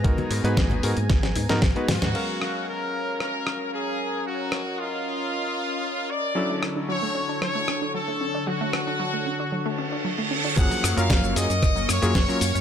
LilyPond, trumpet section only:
\new Staff \with { instrumentName = "Trumpet section" } { \time 4/4 \key fis \major \tempo 4 = 114 r2. r8 fis'8~ | fis'4 ais'4 ais'4 gis'4 | fis'4 eis'2~ eis'8 d''8~ | d''8 r8 cis''4 cis''4 a'4 |
fis'2. r4 | fis''8. eis''8. dis''4 cis''4. | }